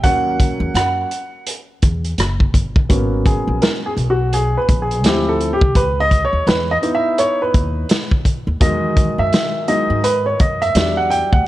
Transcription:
0.03 upright bass D#2, upright piano F#3 A#3 C#4 F#5, kick, closed hi-hat
0.40 kick, closed hi-hat
0.60 upright bass E2
0.74 upright bass F#2, upright piano F#5, cross-stick, closed hi-hat
1.11 closed hi-hat
1.47 closed hi-hat
1.82 upright bass E2, kick, closed hi-hat
2.04 closed hi-hat
2.18 upright bass F#1, cross-stick, closed hi-hat
2.40 kick
2.54 upright bass G1, kick, closed hi-hat
2.76 kick
2.89 upright bass G#1, upright piano F#3 A#3 B3 C#4, kick, closed hi-hat
3.26 upright piano G#4, kick, closed hi-hat
3.47 upright bass A#1
3.62 upright piano A#4, snare, closed hi-hat
3.86 upright piano G#4
3.97 upright bass B1, closed hi-hat
4.10 upright piano F#4
4.33 upright piano G#4, closed hi-hat
4.58 upright piano B4
4.69 upright bass A#1, kick, closed hi-hat
4.82 upright piano G#4
4.91 closed hi-hat
5.04 upright bass D2, upright piano F3 C4 E4 G4, snare, closed hi-hat
5.29 upright piano A4
5.41 closed hi-hat
5.53 upright piano G4
5.61 upright bass C2, kick
5.75 upright bass C#2, upright piano B4, kick, closed hi-hat
6.00 upright piano D#5
6.11 kick, closed hi-hat
6.25 upright piano C#5
6.33 upright bass D#2
6.47 upright bass E2, upright piano B4, snare, closed hi-hat
6.71 upright piano D#5
6.82 upright piano B3 D#4 E4, closed hi-hat
6.95 upright piano E5
7.18 upright piano C#5, closed hi-hat
7.42 upright piano B4
7.54 upright bass D#2, kick, closed hi-hat
7.89 snare, closed hi-hat
8.11 kick
8.25 kick, closed hi-hat
8.47 upright bass D#2
8.60 upright bass E2, upright piano D#3 F#3 G#3 D#5, kick, closed hi-hat
8.97 kick, closed hi-hat
9.18 upright bass F#2, upright piano E5
9.33 snare, closed hi-hat
9.67 upright piano F#3 G#3 D#4 D#5, closed hi-hat
9.90 upright bass G#2
10.04 upright piano B4, closed hi-hat
10.26 upright piano C#5
10.40 upright bass F#2, upright piano D#5, kick, closed hi-hat
10.62 upright piano E5, closed hi-hat
10.75 upright bass E2, upright piano F#3 G3 D4, snare, closed hi-hat
10.97 upright piano F#5
11.10 upright piano G5, closed hi-hat
11.32 upright bass D2, upright piano F#5, kick

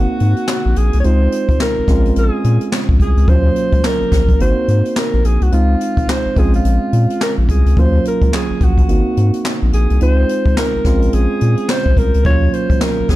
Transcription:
Already playing: tine electric piano A#3 C4 D#4 F#4, alto saxophone F#4
0.20 analog synth bass G#2, closed hi-hat
0.36 closed hi-hat
0.47 snare, clap, closed hi-hat
0.66 analog synth bass A#1
0.76 analog synth bass A#1, alto saxophone G#4, closed hi-hat
0.93 analog synth bass C2, closed hi-hat
1.00 alto saxophone C#5
1.04 analog synth bass C#2, tine electric piano G#3 C4 D#4 F4, alto saxophone C5, closed hi-hat
1.32 closed hi-hat
1.49 analog synth bass C#2, kick, closed hi-hat
1.60 alto saxophone A#4, snare, clap, closed hi-hat
1.78 analog synth bass A#1
1.88 analog synth bass A#1, tine electric piano G#3 C4 C#4 F4, kick, snare, closed hi-hat
2.05 closed hi-hat
2.16 analog synth bass A#1, alto saxophone G#4, closed hi-hat
2.44 analog synth bass A#2, closed hi-hat
2.61 closed hi-hat
2.72 snare, clap, closed hi-hat
2.89 analog synth bass A#1, kick
3.00 analog synth bass C2, alto saxophone G#4, kick, closed hi-hat
3.17 analog synth bass C#2, closed hi-hat
3.28 analog synth bass D#2, tine electric piano F#3 A#3 C#4 F4, alto saxophone C5, kick, closed hi-hat
3.56 closed hi-hat
3.73 analog synth bass C#2, kick, closed hi-hat
3.84 alto saxophone A#4, snare, clap, closed hi-hat
4.01 analog synth bass A#1
4.12 analog synth bass A#1, kick, snare, closed hi-hat
4.29 kick, closed hi-hat
4.39 analog synth bass G#1, tine electric piano A#3 C4 D#4 F#4, alto saxophone C5, closed hi-hat
4.68 analog synth bass G#2, closed hi-hat
4.85 closed hi-hat
4.96 alto saxophone A#4, snare, clap, closed hi-hat
5.14 analog synth bass A#1
5.24 analog synth bass A#1, alto saxophone G#4, closed hi-hat
5.41 analog synth bass C2, alto saxophone F#4, closed hi-hat
5.52 analog synth bass C#2, tine electric piano G#3 C4 D#4 F4, alto saxophone F4, closed hi-hat
5.81 closed hi-hat
5.97 analog synth bass C#2, kick, closed hi-hat
6.09 alto saxophone C5, snare, clap
6.26 analog synth bass A#1
6.36 analog synth bass A#1, tine electric piano G#3 C4 C#4 F4, alto saxophone G#4, kick, closed hi-hat
6.54 alto saxophone F4, closed hi-hat
6.65 analog synth bass A#1, closed hi-hat
6.93 analog synth bass A#2, closed hi-hat
7.10 closed hi-hat
7.21 alto saxophone A#4, snare, clap, closed hi-hat
7.38 analog synth bass A#1
7.49 analog synth bass C2, alto saxophone G#4, kick, closed hi-hat
7.66 analog synth bass C#2, closed hi-hat
7.77 analog synth bass D#2, tine electric piano F#3 A#3 C#4 F4, alto saxophone C5, kick, closed hi-hat
8.05 alto saxophone A#4, closed hi-hat
8.22 analog synth bass C#2, kick, closed hi-hat
8.33 alto saxophone G#4, snare, clap, closed hi-hat
8.50 analog synth bass A#1
8.61 analog synth bass A#1, alto saxophone F#4, kick, closed hi-hat
8.78 kick, closed hi-hat
8.88 analog synth bass G#1, tine electric piano A#3 C4 D#4 F#4, closed hi-hat
9.17 analog synth bass G#2, closed hi-hat
9.33 closed hi-hat
9.45 snare, clap, closed hi-hat
9.62 analog synth bass A#1
9.73 analog synth bass A#1, alto saxophone G#4, closed hi-hat
9.90 analog synth bass C2, closed hi-hat
10.01 analog synth bass C#2, tine electric piano G#3 C4 D#4 F4, alto saxophone C5, closed hi-hat
10.29 closed hi-hat
10.46 analog synth bass C#2, kick, closed hi-hat
10.57 alto saxophone A#4, snare, clap
10.75 analog synth bass A#1
10.84 analog synth bass A#1, tine electric piano G#3 C4 C#4 F4, kick, snare, closed hi-hat
11.02 closed hi-hat
11.13 analog synth bass A#1, alto saxophone G#4, closed hi-hat
11.41 analog synth bass A#2, closed hi-hat
11.57 closed hi-hat
11.68 alto saxophone C5, snare, clap, closed hi-hat
11.86 analog synth bass A#1, kick
11.97 analog synth bass C2, alto saxophone A#4, kick, closed hi-hat
12.14 analog synth bass C#2, closed hi-hat
12.24 analog synth bass D#2, tine electric piano F#3 A#3 C#4 F4, alto saxophone C#5, kick, closed hi-hat
12.53 alto saxophone C5, closed hi-hat
12.70 analog synth bass C#2, kick, closed hi-hat
12.81 alto saxophone A#4, snare, clap, closed hi-hat
12.99 analog synth bass A#1
13.09 analog synth bass A#1, alto saxophone G#4, kick, snare, closed hi-hat

